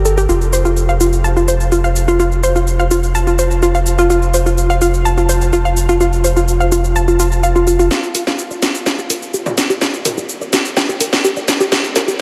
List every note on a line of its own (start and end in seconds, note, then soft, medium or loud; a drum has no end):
0.00 0.27 G1 medium
0.05 0.13 A4 medium
0.05 shaker medium
0.18 0.20 G4 loud
0.18 shaker soft
0.29 7.89 F1 medium
0.29 0.34 F4 medium
0.29 shaker soft
0.41 shaker soft
0.53 0.58 C5 medium
0.53 shaker medium
0.65 0.68 F4 medium
0.65 shaker soft
0.77 shaker soft
0.89 0.94 F5 medium
0.89 shaker soft
1.00 1.06 F4 medium
1.00 shaker medium
1.13 shaker soft
1.24 1.30 A5 medium
1.24 shaker soft
1.37 1.41 F4 medium
1.37 shaker soft
1.48 1.53 C5 medium
1.48 shaker medium
1.60 shaker soft
1.72 1.77 F4 loud
1.72 shaker soft
1.84 1.89 F5 medium
1.84 shaker soft
1.96 shaker medium
2.08 2.15 F4 loud
2.08 shaker soft
2.20 2.25 F4 medium
2.20 shaker soft
2.32 shaker soft
2.43 2.49 C5 medium
2.43 shaker medium
2.56 2.59 F4 medium
2.56 shaker soft
2.67 shaker soft
2.79 2.84 F5 medium
2.79 shaker soft
2.91 2.96 F4 medium
2.91 shaker medium
3.03 shaker soft
3.15 3.20 A5 medium
3.15 shaker soft
3.27 3.32 F4 medium
3.27 shaker soft
3.39 3.44 C5 medium
3.39 shaker medium
3.51 shaker soft
3.62 3.68 F4 loud
3.62 shaker soft
3.75 3.80 F5 medium
3.75 shaker soft
3.86 shaker medium
3.98 4.06 F4 loud
3.98 shaker soft
4.10 4.15 F4 medium
4.10 shaker soft
4.22 shaker soft
4.34 4.39 C5 medium
4.34 shaker medium
4.46 4.49 F4 medium
4.46 shaker soft
4.58 shaker soft
4.70 4.75 F5 medium
4.70 shaker soft
4.82 4.87 F4 medium
4.82 shaker medium
4.94 shaker soft
5.05 5.10 A5 medium
5.05 shaker soft
5.18 5.22 F4 medium
5.18 shaker soft
5.29 5.34 C5 medium
5.29 shaker medium
5.41 shaker soft
5.53 5.58 F4 loud
5.53 shaker soft
5.65 5.70 F5 medium
5.65 shaker soft
5.77 shaker medium
5.89 5.96 F4 loud
5.89 shaker soft
6.01 6.06 F4 medium
6.01 shaker soft
6.13 shaker soft
6.24 6.30 C5 medium
6.24 shaker medium
6.37 6.40 F4 medium
6.37 shaker soft
6.48 shaker soft
6.60 6.65 F5 medium
6.60 shaker soft
6.72 6.77 F4 medium
6.72 shaker medium
6.84 shaker soft
6.96 7.01 A5 medium
6.96 shaker soft
7.08 7.13 F4 medium
7.08 shaker soft
7.20 7.25 F4 medium
7.20 shaker medium
7.32 shaker soft
7.43 7.46 F5 medium
7.43 shaker soft
7.56 7.63 F4 medium
7.56 shaker soft
7.67 7.72 F4 medium
7.67 shaker medium
7.79 7.84 F4 loud
7.79 shaker soft
7.91 7.96 G4 medium
7.91 snare soft
7.91 shaker soft
8.03 shaker soft
8.15 8.20 A#4 medium
8.15 open hi-hat loud
8.15 shaker medium
8.27 8.30 G4 medium
8.27 snare soft
8.27 shaker soft
8.39 shaker soft
8.51 8.56 D5 medium
8.51 shaker soft
8.62 8.68 G4 medium
8.62 snare medium
8.62 open hi-hat medium
8.62 shaker medium
8.75 shaker soft
8.86 8.91 G5 medium
8.86 snare medium
8.86 shaker soft
8.98 9.03 G4 medium
8.98 shaker soft
9.10 9.15 A#4 medium
9.10 open hi-hat loud
9.10 shaker medium
9.22 shaker soft
9.34 9.39 G4 loud
9.34 shaker soft
9.46 9.51 D5 medium
9.46 mid tom medium
9.46 shaker soft
9.58 snare medium
9.58 open hi-hat medium
9.58 shaker medium
9.70 9.77 G4 loud
9.70 shaker soft
9.81 9.87 G4 medium
9.81 snare medium
9.81 shaker soft
9.94 shaker soft
10.05 10.11 A#4 medium
10.05 mid tom medium
10.05 open hi-hat loud
10.05 shaker medium
10.18 10.21 G4 medium
10.18 shaker soft
10.29 shaker soft
10.41 10.46 D5 medium
10.41 shaker soft
10.53 10.58 G4 medium
10.53 snare medium
10.53 open hi-hat medium
10.53 shaker medium
10.65 shaker soft
10.77 10.82 G5 medium
10.77 snare medium
10.77 shaker soft
10.89 10.94 G4 medium
10.89 shaker soft
11.01 11.06 A#4 medium
11.01 open hi-hat loud
11.01 shaker medium
11.13 snare medium
11.13 shaker soft
11.24 11.30 G4 loud
11.24 shaker soft
11.37 11.42 D5 medium
11.37 shaker soft
11.48 snare medium
11.48 open hi-hat medium
11.48 shaker medium
11.60 11.68 G4 loud
11.60 shaker soft
11.72 11.77 G4 medium
11.72 snare medium
11.72 shaker soft
11.84 shaker soft
11.96 12.01 A#4 medium
11.96 snare medium
11.96 open hi-hat loud
11.96 shaker medium
12.08 12.11 G4 medium
12.08 shaker soft